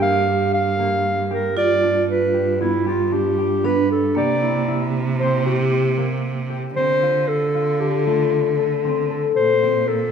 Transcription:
Already playing: cello G2, harp C4 D4 G4, vibraphone G4
0.01 harp A#3, clarinet F5
0.28 harp G4
0.54 clarinet F5
0.79 harp A#3
1.31 harp G4, clarinet A#4
1.57 cello G2, vibraphone F4, clarinet D5
1.83 harp D4
2.10 clarinet B4
2.34 harp G4
2.61 harp B3, clarinet E4
2.86 clarinet F4, harp G4
3.12 harp D4, clarinet G4
3.38 harp G4
3.64 harp B3, vibraphone D4, clarinet B4
3.91 clarinet A4
4.15 cello C3, vibraphone A#3, harp G4, clarinet D5
4.42 harp E4
4.68 harp E4
5.19 harp C4, clarinet C5
5.46 clarinet G4, harp G4
5.98 harp A#3
6.50 harp G4
6.76 cello D3, harp C4, clarinet C5
7.02 harp F4
7.28 clarinet A4
7.55 harp F4
7.81 clarinet G4, harp A4
8.06 harp A3, clarinet F4
8.58 harp A4
8.85 harp C4
9.10 harp A4
9.36 cello A#2, clarinet C5
9.63 harp C4
9.88 clarinet A4, harp A#4

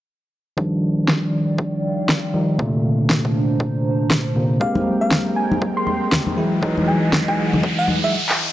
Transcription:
0.57 tine electric piano D#3 F3 G3 D4, ambient pad D#3, kick
0.89 ambient pad D5
1.08 kick, snare
1.33 ambient pad G5
1.51 ambient pad F5
1.58 kick
2.09 kick, snare
2.34 tine electric piano D#3 F3 G3 D#4
2.58 tine electric piano A#2 C3 D3 A3, ambient pad D4, kick
2.85 ambient pad A#5
2.91 ambient pad C5
3.10 kick, snare
3.25 kick
3.60 kick
4.10 kick, snare
4.35 tine electric piano A#2 C3 D3 A#3
4.60 tine electric piano G#3 A#3 C4 G4, string machine G#3 C4 A#4 G5, ambient pad G#3, fm electric piano F5, kick, riser
4.75 high conga
5.01 fm electric piano F5
5.11 kick, snare, high conga
5.36 fm electric piano G#5
5.41 ambient pad G5
5.52 high conga
5.62 kick
5.77 fm electric piano C6
5.87 fm electric piano C6, high conga
6.12 kick, snare, low conga
6.27 high conga
6.37 tine electric piano E3 F#3 G#3 E4, ambient pad E3, string machine E3 D#5 F#5
6.51 ambient pad D#5
6.62 tine electric piano E3 F#3 G#3 D#4, kick
6.78 high conga
6.88 fm electric piano G#5
7.12 ambient pad F#5, kick, snare, high conga
7.16 ambient pad G#5
7.28 fm electric piano G#5, kick
7.53 high conga, low conga
7.63 kick
7.79 fm electric piano F#5
7.88 high conga
8.04 fm electric piano E5
8.29 clap

